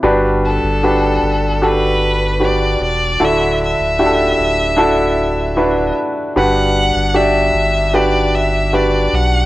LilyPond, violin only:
\new Staff \with { instrumentName = "Violin" } { \time 4/4 \key g \major \tempo 4 = 76 r8 a'4. b'4 d''8 d''8 | e''8 e''2. r8 | fis''4 e''4 d''8 e''8 d''8 fis''8 | }